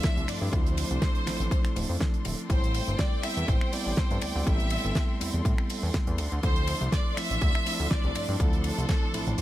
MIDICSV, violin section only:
0, 0, Header, 1, 2, 480
1, 0, Start_track
1, 0, Tempo, 491803
1, 517, Time_signature, 4, 2, 24, 8
1, 9191, End_track
2, 0, Start_track
2, 0, Title_t, "Violin section"
2, 0, Program_c, 0, 48
2, 0, Note_on_c, 0, 76, 117
2, 276, Note_off_c, 0, 76, 0
2, 278, Note_on_c, 0, 74, 99
2, 518, Note_off_c, 0, 74, 0
2, 518, Note_on_c, 0, 72, 109
2, 2198, Note_off_c, 0, 72, 0
2, 2437, Note_on_c, 0, 72, 108
2, 2884, Note_off_c, 0, 72, 0
2, 2916, Note_on_c, 0, 74, 106
2, 3156, Note_on_c, 0, 76, 113
2, 3157, Note_off_c, 0, 74, 0
2, 3397, Note_off_c, 0, 76, 0
2, 3397, Note_on_c, 0, 72, 101
2, 3637, Note_off_c, 0, 72, 0
2, 3638, Note_on_c, 0, 74, 101
2, 3878, Note_off_c, 0, 74, 0
2, 3878, Note_on_c, 0, 72, 98
2, 4114, Note_on_c, 0, 74, 99
2, 4118, Note_off_c, 0, 72, 0
2, 4356, Note_off_c, 0, 74, 0
2, 4356, Note_on_c, 0, 76, 110
2, 5077, Note_off_c, 0, 76, 0
2, 6281, Note_on_c, 0, 72, 118
2, 6726, Note_off_c, 0, 72, 0
2, 6763, Note_on_c, 0, 74, 108
2, 6999, Note_on_c, 0, 76, 127
2, 7000, Note_off_c, 0, 74, 0
2, 7715, Note_on_c, 0, 74, 111
2, 7718, Note_off_c, 0, 76, 0
2, 8195, Note_on_c, 0, 69, 106
2, 8196, Note_off_c, 0, 74, 0
2, 9191, Note_off_c, 0, 69, 0
2, 9191, End_track
0, 0, End_of_file